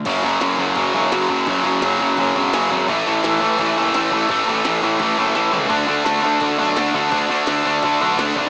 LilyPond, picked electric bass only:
\new Staff \with { instrumentName = "Picked electric bass" } { \clef bass \time 4/4 \key fis \minor \tempo 4 = 170 fis,,8 fis,,8 fis,,8 fis,,8 fis,,8 e,,8 fis,,8 fis,,8 | fis,,8 fis,,8 fis,,8 fis,,8 fis,,8 e,,8 fis,,8 gis,,8 | a,,8 a,,8 a,,8 a,,8 a,,8 fis,,8 a,,8 a,,8 | a,,8 a,,8 a,,8 a,,8 a,,8 fis,,8 a,,8 cis,8 |
d,8 d,8 d,8 d,8 d,8 b,,8 d,8 d,8 | d,8 d,8 d,8 d,8 d,8 b,,8 d,8 gis,,8 | }